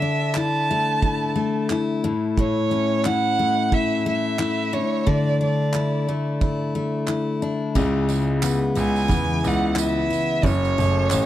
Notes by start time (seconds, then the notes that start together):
Already playing: D3 E5
0.02 D4
0.35 E4 A5, clap
0.71 A3
1.02 E4, kick
1.36 A3
1.70 E4, clap
2.04 A2
2.37 A2 C#5, kick
2.71 C#4
3.05 E4 F#5, clap
3.39 A3
3.72 E4 E5, kick
4.06 A3 E5
4.39 E4, clap
4.73 D3 C#5
5.07 D3 D5, kick
5.41 D4 D5
5.74 E4, clap
6.08 A3
6.41 E4, kick
6.75 A3
7.07 E4, clap
7.42 D4
7.75 C#2 C#3, kick, crash, tambourine
8.09 G#3, tambourine
8.42 B3, clap, tambourine
8.75 C#2 E4 G#5, tambourine
8.96 tambourine
9.08 E2 E3, kick, tambourine
9.44 C#2 B3 F#5, tambourine
9.76 E4, clap, tambourine
9.80 E5
10.10 B3, tambourine
10.43 F#1 F#2 C#5, kick, tambourine
10.65 tambourine
10.78 F#1 A3, tambourine
11.10 A1 C#4, clap, tambourine